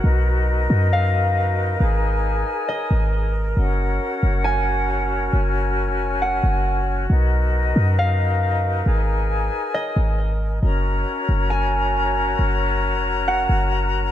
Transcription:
Already playing: flute section F#4 A#4, harp F#5
0.04 808-style bass B1, flute section D#4 B4 D#5
0.70 808-style bass F#2
0.93 harp F5
1.80 808-style bass G#1, flute section G#4 G#5
2.69 harp D#5
2.91 808-style bass G#1
3.57 808-style bass F#1, flute section C#4 F#4 C#5 F#5
4.23 808-style bass F#1
4.44 harp G#5
5.33 808-style bass F#1, flute section G#5
5.89 808-style bass F1
6.22 harp F#5
6.44 808-style bass F#1
7.10 808-style bass B1, flute section D#4 A#4 B4 D#5
7.76 808-style bass F#2
7.99 harp F5
8.86 808-style bass G#1, flute section G#4 G#5
9.74 harp D#5
9.96 808-style bass G#1
10.63 808-style bass F#1, flute section C#4 F#4 A#4 C#5 A#5
11.29 808-style bass F#1
11.50 harp G#5
12.39 808-style bass F#1
12.94 808-style bass F1
13.28 harp F#5
13.49 808-style bass F#1

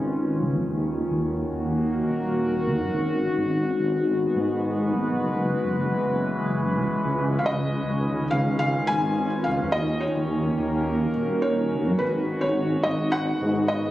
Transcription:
Already playing: detuned saw bass G#1, ambient pad D#3 G#3 C#4 F4 B4
0.40 detuned saw bass C#2
0.54 detuned saw bass F2
0.68 detuned saw bass D#2
1.10 detuned saw bass D#2, ambient pad F#4
1.23 ambient pad A#3
1.53 detuned saw bass D#2
1.70 ambient pad A#4
2.10 detuned saw bass D#1
2.66 detuned saw bass D#2
2.80 detuned saw bass F#2
2.94 detuned saw bass G#1
3.29 ambient pad G#3
3.37 detuned saw bass G#1
3.58 ambient pad B3
3.76 detuned saw bass G#1, ambient pad B4
4.36 detuned saw bass G#2
4.93 detuned saw bass G#1
5.07 detuned saw bass B1
5.21 detuned saw bass F#1, ambient pad E3
5.37 ambient pad C#4
5.63 detuned saw bass F#1
6.06 detuned saw bass F#1
6.77 detuned saw bass C#2
7.05 detuned saw bass C#2
7.39 felt piano F5
7.46 detuned saw bass C#2, ambient pad D#3, felt piano D#5
7.90 detuned saw bass C#2
8.31 detuned saw bass C#2, ambient pad F4, felt piano F5
8.59 felt piano F5
8.87 detuned saw bass G#1, felt piano G#5
9.44 detuned saw bass C#2, felt piano F5
9.60 detuned saw bass F2
9.72 detuned saw bass D#2, felt piano D#5
10.00 felt piano C#5
10.07 ambient pad A#3
10.16 detuned saw bass D#2
10.41 ambient pad A#4
10.50 ambient pad F#4
10.59 detuned saw bass D#2
11.15 detuned saw bass D#1
11.42 felt piano C#5
11.72 detuned saw bass D#2
11.86 detuned saw bass F#2
11.99 detuned saw bass G#1, felt piano B4
12.41 detuned saw bass G#1, felt piano C#5
12.69 ambient pad G#3
12.83 detuned saw bass G#1, felt piano D#5
13.02 ambient pad B3 B4
13.12 felt piano F#5
13.42 detuned saw bass G#2
13.68 felt piano D#5

